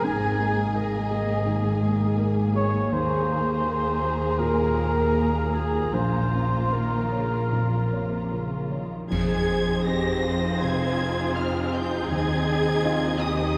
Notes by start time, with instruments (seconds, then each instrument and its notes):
Already playing: french horn section C4 G#4, violin section G#4 G#5
0.04 double bass section G#1, felt piano G#2, cello section G#2, viola section A#3, clarinet G#5, cor anglais G#5
0.40 felt piano G#3
0.75 french horn section A#3, felt piano A#4, clarinet D#5, cor anglais D#5
1.10 felt piano G#4
1.46 felt piano D#3
1.82 felt piano G#3
2.18 felt piano A#4
2.54 felt piano G#4, clarinet C#5, cor anglais C#5
2.92 felt piano D#2, cello section D#2, double bass section D#2, violin section G#4 A#5, french horn section G#4, cor anglais C5, clarinet C5
3.30 felt piano A#3
3.65 felt piano A#4
4.02 felt piano G#4
4.39 felt piano A#2, clarinet A#4, cor anglais A#4
4.75 felt piano A#3
5.15 felt piano A#4
5.53 clarinet G#4, felt piano G#4, cor anglais G#4
5.92 felt piano A#1, double bass section A#1, cello section A#2, viola section A#3, french horn section A#3 F4, violin section F4, clarinet C5, cor anglais C5
6.33 felt piano C#4
6.73 cello section D#3, felt piano A#4, clarinet A#4, cor anglais A#4
7.12 cello section C#3, felt piano C#5
7.53 felt piano F2, cello section A#2
7.93 cello section C3, felt piano C#5
8.32 cello section C#3, felt piano A#4
8.71 cello section D#3, felt piano C#5
9.10 felt piano F2, double bass section F2, viola section C4 D#4, violin section G#4 C5 G#6, cello section G#4, concert bass drum, crash
9.85 felt piano C4 D#4 C5, cello section G4, violin section A#6
10.23 cello section F4
10.61 felt piano C3, violin section G#6
11.36 felt piano C4 D#4 C5, violin section F6
11.73 violin section G6
12.09 double bass section D#2, felt piano D#2, cello section G#4, violin section D#5 G#6
12.85 felt piano C4 D#4 D#5, cello section F4
13.21 cello section G4, violin section D#6